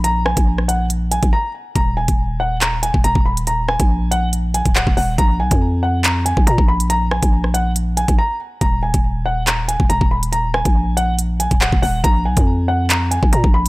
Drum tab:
HH |x--x--x-x-xx----|x--x----x-x-x--x|x--x--x-x-xx--o-|x--x----x-x-x--x|
CP |----------------|--------x-------|------------x---|--------x-------|
SD |--r--r----------|----------------|--r-------------|----------------|
BD |---o-------o----|o--o-------o-o--|---o-------o-o--|o--o-------o-o--|

HH |x--x--x-x-xx----|x--x----x-x-x--x|x--x--x-x-xx--o-|x--x----x-x-x---|
CP |----------------|--------x-------|------------x---|--------x-------|
SD |--r--r----------|----------------|--r-------------|----------------|
BD |---o-------o----|o--o-------o-o--|---o-------o-o--|o--o-------o-o--|